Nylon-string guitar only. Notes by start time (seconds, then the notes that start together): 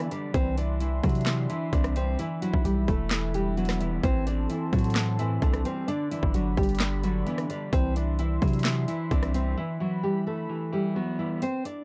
0.11 D4 D5
0.34 C4 C5
0.57 D4 D5
0.81 E3 E4
1.04 F#3 F#4
1.50 E3 E4
1.73 D4 D5
1.96 C4 C5
2.19 E3 E4
2.42 F#3 F#4
2.65 G3 G4
2.88 A3 A4
3.35 G3 G4
3.57 F#3 F#4
3.81 E3 E4
4.04 C4 C5
4.26 D4 D5
4.50 E3 E4
4.73 F#3 F#4
5.19 E3 E4
5.42 D4 D5
5.65 C4 C5
5.88 D4 D5
6.11 E3 E4
6.35 F#3 F#4
6.58 G3 G4
7.04 F#3 F#4
7.26 E3 E4
7.50 D4 D5
7.73 C4 C5
7.96 D4 D5
8.19 E3 E4
8.42 F#3 F#4
8.88 E3 E4
9.11 D4 D5
9.34 C4 C5
9.57 E3 E4
9.80 F#3 F#4
10.03 G3 G4
10.27 A3 A4
10.73 G3 G4
10.96 F#3 F#4
11.19 E3 E4
11.42 C4 C5
11.65 D4 D5